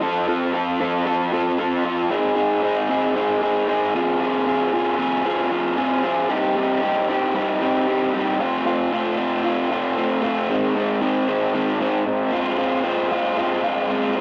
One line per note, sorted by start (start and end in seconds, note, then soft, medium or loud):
0.01 0.27 F3 medium
0.01 0.28 C4 medium
0.01 0.27 F4 loud
0.01 0.28 A4 loud
0.28 0.52 F3 medium
0.28 0.54 C4 medium
0.28 0.53 F4 medium
0.28 0.54 A4 medium
0.53 0.79 F3 medium
0.53 0.80 C4 loud
0.53 0.79 F4 medium
0.53 0.80 A4 loud
0.80 1.05 F3 medium
0.80 1.06 C4 loud
0.80 1.06 F4 medium
0.80 1.06 A4 medium
1.06 1.31 F3 loud
1.06 1.33 C4 loud
1.06 1.32 F4 loud
1.06 1.32 A4 loud
1.33 1.58 F3 medium
1.33 1.59 C4 medium
1.33 1.59 F4 loud
1.33 1.59 A4 loud
1.59 1.83 F3 medium
1.59 1.85 C4 medium
1.59 1.84 F4 medium
1.59 1.84 A4 medium
1.85 2.09 F3 medium
1.85 2.10 C4 medium
1.85 2.10 F4 medium
1.85 2.10 A4 medium
2.10 2.35 C4 loud
2.10 2.35 D#4 loud
2.10 2.36 G#4 loud
2.36 2.62 C4 medium
2.36 2.62 D#4 medium
2.36 2.63 G#4 loud
2.62 2.88 C4 medium
2.62 2.88 D#4 loud
2.62 2.90 G#4 loud
2.89 3.15 C4 medium
2.89 3.14 D#4 medium
2.89 3.15 G#4 medium
3.15 3.41 C4 loud
3.15 3.41 D#4 loud
3.15 3.41 G#4 loud
3.42 3.67 C4 medium
3.42 3.67 D#4 medium
3.42 3.67 G#4 loud
3.68 3.94 C4 medium
3.68 3.93 D#4 medium
3.68 3.93 G#4 medium
3.94 4.19 F3 medium
3.94 4.20 C4 medium
3.94 4.19 F4 loud
3.94 4.20 G#4 loud
4.20 4.46 F3 loud
4.20 4.47 C4 loud
4.20 4.46 F4 loud
4.20 4.47 G#4 loud
4.47 4.72 F3 medium
4.47 4.73 C4 medium
4.47 4.73 F4 medium
4.47 4.73 G#4 medium
4.73 4.97 F3 medium
4.73 4.99 C4 medium
4.73 4.98 F4 medium
4.73 4.98 G#4 medium
4.98 5.24 F3 medium
4.98 5.25 C4 medium
4.98 5.25 F4 medium
4.98 5.25 G#4 medium
5.25 5.51 F3 loud
5.25 5.51 C4 loud
5.25 5.51 F4 loud
5.25 5.52 G#4 loud
5.52 5.76 F3 medium
5.52 5.78 C4 medium
5.52 5.77 F4 medium
5.52 5.78 G#4 medium
5.77 6.03 F3 medium
5.77 6.04 C4 medium
5.77 6.04 F4 medium
5.77 6.04 G#4 medium
6.04 6.29 F3 medium
6.04 6.30 C4 medium
6.04 6.29 F4 medium
6.04 6.29 G#4 loud
6.30 6.56 G3 medium
6.30 6.56 C4 loud
6.30 6.56 D#4 loud
6.30 6.57 G4 loud
6.56 6.82 G3 medium
6.56 6.82 C4 medium
6.56 6.82 D#4 medium
6.56 6.83 G4 medium
6.82 7.08 G3 medium
6.82 7.08 C4 medium
6.82 7.08 D#4 medium
6.82 7.09 G4 medium
7.08 7.33 G3 medium
7.08 7.34 C4 medium
7.08 7.34 D#4 medium
7.08 7.34 G4 loud
7.34 7.60 G3 loud
7.34 7.61 C4 loud
7.34 7.61 D#4 loud
7.34 7.61 G4 loud
7.61 7.86 G3 medium
7.61 7.87 C4 medium
7.61 7.87 D#4 loud
7.61 7.87 G4 loud
7.87 8.12 G3 medium
7.87 8.13 C4 medium
7.87 8.13 D#4 medium
7.87 8.13 G4 medium
8.13 8.38 G3 medium
8.13 8.39 C4 medium
8.13 8.38 D#4 medium
8.13 8.39 G4 medium
8.40 8.64 A3 loud
8.40 8.65 C4 loud
8.40 8.65 F4 loud
8.65 8.91 A3 medium
8.65 8.92 C4 medium
8.65 8.92 F4 medium
8.92 9.17 A3 medium
8.92 9.18 C4 medium
8.92 9.17 F4 loud
9.18 9.42 A3 medium
9.18 9.43 C4 medium
9.18 9.43 F4 loud
9.44 9.68 A3 loud
9.44 9.70 C4 loud
9.44 9.70 F4 loud
9.70 9.95 A3 medium
9.70 9.96 C4 loud
9.70 9.96 F4 loud
9.96 10.21 A3 medium
9.96 10.22 C4 medium
9.96 10.22 F4 medium
10.22 10.47 A3 medium
10.22 10.50 C4 medium
10.22 10.48 F4 loud
10.50 10.74 D#3 loud
10.50 10.76 G#3 loud
10.50 10.76 C4 loud
10.75 11.00 D#3 medium
10.75 11.02 G#3 medium
10.75 11.02 C4 medium
11.02 11.27 D#3 medium
11.02 11.28 G#3 medium
11.02 11.29 C4 loud
11.28 11.53 D#3 medium
11.28 11.54 G#3 medium
11.28 11.54 C4 loud
11.54 11.79 D#3 loud
11.54 11.79 G#3 loud
11.54 11.81 C4 loud
11.80 12.05 D#3 loud
11.80 12.05 G#3 loud
11.80 12.06 C4 loud
12.06 12.31 D#3 medium
12.06 12.31 G#3 medium
12.06 12.33 C4 medium
12.32 12.57 G#3 loud
12.32 12.57 C4 loud
12.32 12.58 F4 loud
12.58 12.83 G#3 medium
12.58 12.84 C4 loud
12.58 12.84 F4 loud
12.84 13.10 G#3 medium
12.84 13.11 C4 medium
12.84 13.11 F4 medium
13.11 13.36 G#3 medium
13.11 13.37 C4 medium
13.11 13.37 F4 loud
13.37 13.62 G#3 medium
13.37 13.63 C4 medium
13.37 13.63 F4 medium
13.64 13.89 G#3 loud
13.64 13.89 C4 loud
13.64 13.89 F4 loud
13.90 14.15 G#3 medium
13.90 14.15 C4 medium
13.90 14.16 F4 medium
14.16 14.21 G#3 medium
14.16 14.21 C4 medium
14.16 14.21 F4 medium